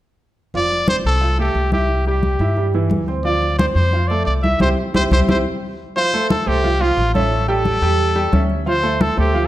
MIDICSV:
0, 0, Header, 1, 5, 480
1, 0, Start_track
1, 0, Key_signature, -1, "major"
1, 0, Tempo, 338409
1, 765, Time_signature, 4, 2, 24, 8
1, 13441, End_track
2, 0, Start_track
2, 0, Title_t, "Trumpet"
2, 0, Program_c, 0, 56
2, 799, Note_on_c, 0, 74, 95
2, 1230, Note_off_c, 0, 74, 0
2, 1264, Note_on_c, 0, 72, 92
2, 1368, Note_off_c, 0, 72, 0
2, 1506, Note_on_c, 0, 69, 86
2, 1943, Note_off_c, 0, 69, 0
2, 1985, Note_on_c, 0, 67, 79
2, 2423, Note_off_c, 0, 67, 0
2, 2456, Note_on_c, 0, 67, 75
2, 2898, Note_off_c, 0, 67, 0
2, 2932, Note_on_c, 0, 67, 71
2, 3833, Note_off_c, 0, 67, 0
2, 4609, Note_on_c, 0, 74, 85
2, 5055, Note_off_c, 0, 74, 0
2, 5081, Note_on_c, 0, 72, 80
2, 5191, Note_off_c, 0, 72, 0
2, 5323, Note_on_c, 0, 72, 82
2, 5784, Note_on_c, 0, 74, 81
2, 5805, Note_off_c, 0, 72, 0
2, 6028, Note_off_c, 0, 74, 0
2, 6037, Note_on_c, 0, 74, 82
2, 6147, Note_off_c, 0, 74, 0
2, 6272, Note_on_c, 0, 76, 90
2, 6504, Note_off_c, 0, 76, 0
2, 6544, Note_on_c, 0, 72, 86
2, 6655, Note_off_c, 0, 72, 0
2, 7030, Note_on_c, 0, 72, 95
2, 7139, Note_off_c, 0, 72, 0
2, 7274, Note_on_c, 0, 72, 84
2, 7382, Note_off_c, 0, 72, 0
2, 7515, Note_on_c, 0, 72, 86
2, 7622, Note_off_c, 0, 72, 0
2, 8464, Note_on_c, 0, 72, 112
2, 8903, Note_off_c, 0, 72, 0
2, 8943, Note_on_c, 0, 69, 96
2, 9184, Note_on_c, 0, 67, 96
2, 9205, Note_off_c, 0, 69, 0
2, 9661, Note_on_c, 0, 65, 94
2, 9683, Note_off_c, 0, 67, 0
2, 10122, Note_off_c, 0, 65, 0
2, 10131, Note_on_c, 0, 69, 89
2, 10575, Note_off_c, 0, 69, 0
2, 10619, Note_on_c, 0, 69, 104
2, 11994, Note_off_c, 0, 69, 0
2, 12303, Note_on_c, 0, 72, 105
2, 12783, Note_on_c, 0, 69, 94
2, 12804, Note_off_c, 0, 72, 0
2, 13012, Note_off_c, 0, 69, 0
2, 13033, Note_on_c, 0, 67, 84
2, 13432, Note_off_c, 0, 67, 0
2, 13441, End_track
3, 0, Start_track
3, 0, Title_t, "Grand piano"
3, 0, Program_c, 1, 0
3, 769, Note_on_c, 1, 53, 66
3, 775, Note_on_c, 1, 65, 64
3, 1161, Note_off_c, 1, 53, 0
3, 1165, Note_off_c, 1, 65, 0
3, 1245, Note_on_c, 1, 72, 61
3, 1249, Note_on_c, 1, 60, 58
3, 1639, Note_off_c, 1, 72, 0
3, 1641, Note_off_c, 1, 60, 0
3, 1719, Note_on_c, 1, 65, 60
3, 1724, Note_on_c, 1, 77, 63
3, 1919, Note_off_c, 1, 65, 0
3, 1922, Note_off_c, 1, 77, 0
3, 1965, Note_on_c, 1, 57, 62
3, 1969, Note_on_c, 1, 69, 60
3, 2359, Note_off_c, 1, 57, 0
3, 2362, Note_off_c, 1, 69, 0
3, 2450, Note_on_c, 1, 64, 62
3, 2453, Note_on_c, 1, 76, 62
3, 2842, Note_off_c, 1, 64, 0
3, 2844, Note_off_c, 1, 76, 0
3, 2938, Note_on_c, 1, 55, 66
3, 2941, Note_on_c, 1, 67, 69
3, 3327, Note_off_c, 1, 55, 0
3, 3329, Note_off_c, 1, 67, 0
3, 3415, Note_on_c, 1, 64, 68
3, 3419, Note_on_c, 1, 76, 68
3, 3609, Note_off_c, 1, 64, 0
3, 3611, Note_off_c, 1, 76, 0
3, 3650, Note_on_c, 1, 55, 63
3, 3652, Note_on_c, 1, 67, 63
3, 3846, Note_off_c, 1, 55, 0
3, 3847, Note_off_c, 1, 67, 0
3, 3892, Note_on_c, 1, 52, 73
3, 3900, Note_on_c, 1, 64, 68
3, 4284, Note_off_c, 1, 52, 0
3, 4289, Note_off_c, 1, 64, 0
3, 4367, Note_on_c, 1, 60, 66
3, 4370, Note_on_c, 1, 72, 63
3, 4565, Note_off_c, 1, 60, 0
3, 4566, Note_off_c, 1, 72, 0
3, 4605, Note_on_c, 1, 53, 72
3, 4612, Note_on_c, 1, 65, 72
3, 5000, Note_off_c, 1, 53, 0
3, 5004, Note_off_c, 1, 65, 0
3, 5086, Note_on_c, 1, 60, 65
3, 5095, Note_on_c, 1, 72, 64
3, 5481, Note_off_c, 1, 60, 0
3, 5486, Note_off_c, 1, 72, 0
3, 5577, Note_on_c, 1, 65, 64
3, 5579, Note_on_c, 1, 77, 60
3, 5771, Note_off_c, 1, 65, 0
3, 5772, Note_off_c, 1, 77, 0
3, 5822, Note_on_c, 1, 57, 62
3, 5825, Note_on_c, 1, 69, 64
3, 6211, Note_off_c, 1, 57, 0
3, 6212, Note_off_c, 1, 69, 0
3, 6300, Note_on_c, 1, 64, 63
3, 6304, Note_on_c, 1, 76, 67
3, 6493, Note_off_c, 1, 64, 0
3, 6495, Note_off_c, 1, 76, 0
3, 6535, Note_on_c, 1, 64, 84
3, 6538, Note_on_c, 1, 60, 88
3, 6539, Note_on_c, 1, 67, 88
3, 6687, Note_off_c, 1, 64, 0
3, 6688, Note_off_c, 1, 60, 0
3, 6689, Note_off_c, 1, 67, 0
3, 7011, Note_on_c, 1, 64, 84
3, 7012, Note_on_c, 1, 60, 83
3, 7012, Note_on_c, 1, 67, 86
3, 7164, Note_off_c, 1, 64, 0
3, 7165, Note_off_c, 1, 60, 0
3, 7165, Note_off_c, 1, 67, 0
3, 7257, Note_on_c, 1, 60, 93
3, 7260, Note_on_c, 1, 64, 89
3, 7261, Note_on_c, 1, 67, 89
3, 7408, Note_off_c, 1, 60, 0
3, 7409, Note_off_c, 1, 64, 0
3, 7410, Note_off_c, 1, 67, 0
3, 7493, Note_on_c, 1, 64, 93
3, 7493, Note_on_c, 1, 67, 88
3, 7495, Note_on_c, 1, 60, 92
3, 7645, Note_off_c, 1, 64, 0
3, 7645, Note_off_c, 1, 67, 0
3, 7647, Note_off_c, 1, 60, 0
3, 8458, Note_on_c, 1, 53, 69
3, 8462, Note_on_c, 1, 65, 68
3, 8470, Note_on_c, 1, 77, 76
3, 8651, Note_off_c, 1, 53, 0
3, 8653, Note_off_c, 1, 65, 0
3, 8658, Note_off_c, 1, 77, 0
3, 8702, Note_on_c, 1, 57, 73
3, 8706, Note_on_c, 1, 69, 78
3, 8708, Note_on_c, 1, 72, 72
3, 9090, Note_off_c, 1, 57, 0
3, 9092, Note_off_c, 1, 69, 0
3, 9094, Note_off_c, 1, 72, 0
3, 9167, Note_on_c, 1, 57, 75
3, 9174, Note_on_c, 1, 69, 76
3, 9175, Note_on_c, 1, 72, 74
3, 9364, Note_off_c, 1, 57, 0
3, 9368, Note_off_c, 1, 69, 0
3, 9369, Note_off_c, 1, 72, 0
3, 9413, Note_on_c, 1, 53, 79
3, 9415, Note_on_c, 1, 77, 76
3, 9418, Note_on_c, 1, 65, 78
3, 9608, Note_off_c, 1, 53, 0
3, 9609, Note_off_c, 1, 77, 0
3, 9611, Note_off_c, 1, 65, 0
3, 9651, Note_on_c, 1, 53, 77
3, 9653, Note_on_c, 1, 65, 82
3, 9659, Note_on_c, 1, 77, 73
3, 10043, Note_off_c, 1, 53, 0
3, 10044, Note_off_c, 1, 65, 0
3, 10048, Note_off_c, 1, 77, 0
3, 10140, Note_on_c, 1, 61, 65
3, 10144, Note_on_c, 1, 73, 66
3, 10149, Note_on_c, 1, 76, 71
3, 10528, Note_off_c, 1, 61, 0
3, 10530, Note_off_c, 1, 73, 0
3, 10533, Note_off_c, 1, 76, 0
3, 10610, Note_on_c, 1, 55, 87
3, 10616, Note_on_c, 1, 79, 89
3, 10619, Note_on_c, 1, 67, 85
3, 11002, Note_off_c, 1, 55, 0
3, 11005, Note_off_c, 1, 79, 0
3, 11007, Note_off_c, 1, 67, 0
3, 11089, Note_on_c, 1, 55, 86
3, 11093, Note_on_c, 1, 67, 83
3, 11095, Note_on_c, 1, 79, 87
3, 11481, Note_off_c, 1, 55, 0
3, 11483, Note_off_c, 1, 67, 0
3, 11484, Note_off_c, 1, 79, 0
3, 11565, Note_on_c, 1, 55, 79
3, 11568, Note_on_c, 1, 67, 79
3, 11573, Note_on_c, 1, 79, 79
3, 11761, Note_off_c, 1, 55, 0
3, 11763, Note_off_c, 1, 67, 0
3, 11766, Note_off_c, 1, 79, 0
3, 11806, Note_on_c, 1, 73, 64
3, 11811, Note_on_c, 1, 61, 68
3, 11814, Note_on_c, 1, 76, 64
3, 12199, Note_off_c, 1, 73, 0
3, 12201, Note_off_c, 1, 61, 0
3, 12203, Note_off_c, 1, 76, 0
3, 12285, Note_on_c, 1, 53, 78
3, 12287, Note_on_c, 1, 65, 76
3, 12294, Note_on_c, 1, 77, 80
3, 12481, Note_off_c, 1, 53, 0
3, 12482, Note_off_c, 1, 65, 0
3, 12486, Note_off_c, 1, 77, 0
3, 12526, Note_on_c, 1, 57, 74
3, 12527, Note_on_c, 1, 69, 76
3, 12537, Note_on_c, 1, 72, 78
3, 12918, Note_off_c, 1, 57, 0
3, 12918, Note_off_c, 1, 69, 0
3, 12924, Note_off_c, 1, 72, 0
3, 13012, Note_on_c, 1, 57, 74
3, 13012, Note_on_c, 1, 69, 73
3, 13012, Note_on_c, 1, 72, 76
3, 13204, Note_off_c, 1, 57, 0
3, 13204, Note_off_c, 1, 69, 0
3, 13204, Note_off_c, 1, 72, 0
3, 13248, Note_on_c, 1, 53, 75
3, 13249, Note_on_c, 1, 65, 79
3, 13256, Note_on_c, 1, 77, 79
3, 13441, Note_off_c, 1, 53, 0
3, 13441, Note_off_c, 1, 65, 0
3, 13441, Note_off_c, 1, 77, 0
3, 13441, End_track
4, 0, Start_track
4, 0, Title_t, "Upright bass"
4, 0, Program_c, 2, 32
4, 766, Note_on_c, 2, 29, 80
4, 1436, Note_off_c, 2, 29, 0
4, 1481, Note_on_c, 2, 36, 79
4, 2153, Note_off_c, 2, 36, 0
4, 2190, Note_on_c, 2, 36, 84
4, 3319, Note_off_c, 2, 36, 0
4, 3393, Note_on_c, 2, 43, 81
4, 4070, Note_off_c, 2, 43, 0
4, 4109, Note_on_c, 2, 38, 85
4, 5239, Note_off_c, 2, 38, 0
4, 5319, Note_on_c, 2, 41, 81
4, 5994, Note_off_c, 2, 41, 0
4, 6045, Note_on_c, 2, 36, 83
4, 6494, Note_off_c, 2, 36, 0
4, 6524, Note_on_c, 2, 36, 92
4, 6705, Note_off_c, 2, 36, 0
4, 7009, Note_on_c, 2, 36, 81
4, 7188, Note_off_c, 2, 36, 0
4, 7245, Note_on_c, 2, 36, 85
4, 7426, Note_off_c, 2, 36, 0
4, 7475, Note_on_c, 2, 36, 81
4, 7661, Note_off_c, 2, 36, 0
4, 9170, Note_on_c, 2, 36, 85
4, 9838, Note_off_c, 2, 36, 0
4, 9883, Note_on_c, 2, 33, 85
4, 11003, Note_off_c, 2, 33, 0
4, 11081, Note_on_c, 2, 40, 81
4, 11752, Note_off_c, 2, 40, 0
4, 11804, Note_on_c, 2, 38, 85
4, 12922, Note_off_c, 2, 38, 0
4, 13012, Note_on_c, 2, 38, 88
4, 13441, Note_off_c, 2, 38, 0
4, 13441, End_track
5, 0, Start_track
5, 0, Title_t, "Drums"
5, 765, Note_on_c, 9, 63, 30
5, 907, Note_off_c, 9, 63, 0
5, 1005, Note_on_c, 9, 63, 29
5, 1147, Note_off_c, 9, 63, 0
5, 1244, Note_on_c, 9, 63, 86
5, 1385, Note_off_c, 9, 63, 0
5, 1486, Note_on_c, 9, 63, 30
5, 1628, Note_off_c, 9, 63, 0
5, 1723, Note_on_c, 9, 63, 35
5, 1865, Note_off_c, 9, 63, 0
5, 1961, Note_on_c, 9, 63, 33
5, 2103, Note_off_c, 9, 63, 0
5, 2199, Note_on_c, 9, 63, 30
5, 2341, Note_off_c, 9, 63, 0
5, 2437, Note_on_c, 9, 63, 64
5, 2579, Note_off_c, 9, 63, 0
5, 2676, Note_on_c, 9, 63, 31
5, 2818, Note_off_c, 9, 63, 0
5, 2916, Note_on_c, 9, 63, 30
5, 3058, Note_off_c, 9, 63, 0
5, 3159, Note_on_c, 9, 63, 52
5, 3301, Note_off_c, 9, 63, 0
5, 3404, Note_on_c, 9, 63, 30
5, 3546, Note_off_c, 9, 63, 0
5, 3643, Note_on_c, 9, 63, 33
5, 3784, Note_off_c, 9, 63, 0
5, 3884, Note_on_c, 9, 63, 31
5, 4026, Note_off_c, 9, 63, 0
5, 4125, Note_on_c, 9, 63, 76
5, 4266, Note_off_c, 9, 63, 0
5, 4370, Note_on_c, 9, 63, 30
5, 4512, Note_off_c, 9, 63, 0
5, 4613, Note_on_c, 9, 63, 30
5, 4754, Note_off_c, 9, 63, 0
5, 4853, Note_on_c, 9, 63, 30
5, 4995, Note_off_c, 9, 63, 0
5, 5097, Note_on_c, 9, 63, 90
5, 5239, Note_off_c, 9, 63, 0
5, 5335, Note_on_c, 9, 63, 29
5, 5477, Note_off_c, 9, 63, 0
5, 5571, Note_on_c, 9, 63, 34
5, 5713, Note_off_c, 9, 63, 0
5, 5816, Note_on_c, 9, 63, 30
5, 5958, Note_off_c, 9, 63, 0
5, 6050, Note_on_c, 9, 63, 31
5, 6192, Note_off_c, 9, 63, 0
5, 6294, Note_on_c, 9, 63, 66
5, 6436, Note_off_c, 9, 63, 0
5, 6525, Note_on_c, 9, 63, 84
5, 6667, Note_off_c, 9, 63, 0
5, 7014, Note_on_c, 9, 63, 91
5, 7156, Note_off_c, 9, 63, 0
5, 7254, Note_on_c, 9, 63, 85
5, 7396, Note_off_c, 9, 63, 0
5, 7500, Note_on_c, 9, 63, 95
5, 7642, Note_off_c, 9, 63, 0
5, 8467, Note_on_c, 9, 63, 30
5, 8609, Note_off_c, 9, 63, 0
5, 8703, Note_on_c, 9, 63, 30
5, 8845, Note_off_c, 9, 63, 0
5, 8941, Note_on_c, 9, 63, 92
5, 9083, Note_off_c, 9, 63, 0
5, 9187, Note_on_c, 9, 63, 32
5, 9329, Note_off_c, 9, 63, 0
5, 9427, Note_on_c, 9, 63, 34
5, 9569, Note_off_c, 9, 63, 0
5, 9659, Note_on_c, 9, 63, 33
5, 9801, Note_off_c, 9, 63, 0
5, 9904, Note_on_c, 9, 63, 33
5, 10046, Note_off_c, 9, 63, 0
5, 10140, Note_on_c, 9, 63, 69
5, 10282, Note_off_c, 9, 63, 0
5, 10379, Note_on_c, 9, 63, 34
5, 10521, Note_off_c, 9, 63, 0
5, 10612, Note_on_c, 9, 63, 32
5, 10754, Note_off_c, 9, 63, 0
5, 10855, Note_on_c, 9, 63, 56
5, 10997, Note_off_c, 9, 63, 0
5, 11095, Note_on_c, 9, 63, 34
5, 11236, Note_off_c, 9, 63, 0
5, 11332, Note_on_c, 9, 63, 34
5, 11474, Note_off_c, 9, 63, 0
5, 11575, Note_on_c, 9, 63, 31
5, 11717, Note_off_c, 9, 63, 0
5, 11814, Note_on_c, 9, 63, 80
5, 11956, Note_off_c, 9, 63, 0
5, 12052, Note_on_c, 9, 63, 31
5, 12194, Note_off_c, 9, 63, 0
5, 12300, Note_on_c, 9, 63, 34
5, 12442, Note_off_c, 9, 63, 0
5, 12538, Note_on_c, 9, 63, 32
5, 12680, Note_off_c, 9, 63, 0
5, 12777, Note_on_c, 9, 63, 89
5, 12918, Note_off_c, 9, 63, 0
5, 13012, Note_on_c, 9, 63, 33
5, 13154, Note_off_c, 9, 63, 0
5, 13256, Note_on_c, 9, 63, 34
5, 13397, Note_off_c, 9, 63, 0
5, 13441, End_track
0, 0, End_of_file